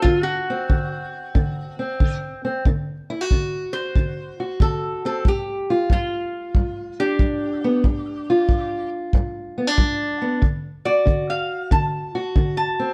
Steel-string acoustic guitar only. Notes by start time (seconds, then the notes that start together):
Already playing: F#4
0.05 D3
0.50 C4
0.70 D3
1.35 D3
1.79 C4
2.00 D3
2.45 C4
2.66 D3
3.10 E4
3.21 F#4
3.32 D3
3.96 D3
4.40 F#4
4.61 D3
5.05 C4
5.25 G2
5.70 F4
5.91 G2
6.56 G2
7.00 D4
7.20 G2
7.64 B3
7.85 G2
8.30 F4
8.49 G2
9.14 G2
9.58 B3
9.67 D4
9.78 G2
10.22 B3
10.42 D3
10.85 F#4
11.05 D3
11.71 D3
12.15 F#4
12.36 D3
12.79 C4